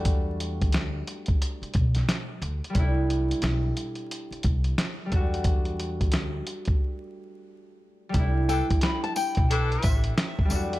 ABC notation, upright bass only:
X:1
M:4/4
L:1/16
Q:"Swing 16ths" 1/4=89
K:Clyd
V:1 name="Upright bass" clef=bass
E,,4 D,,2 z4 B,,,2 z2 D,, z | C,,4 B,,,2 z4 C,,2 z2 E,,2- | E,,4 D,,2 z8 z2 | C,,3 z4 B,,,3 A,,,2 z2 E,,2 |]